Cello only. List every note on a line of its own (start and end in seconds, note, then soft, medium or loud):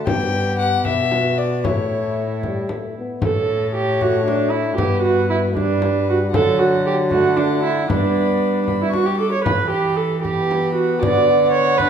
0.08 0.82 G2 medium
0.85 1.66 B2 medium
1.64 3.02 A2 medium
3.22 4.74 A2 medium
4.79 6.31 G2 medium
6.35 7.87 D3 medium
7.89 9.23 G3 medium
9.46 10.98 E3 medium
11.02 11.90 D3 medium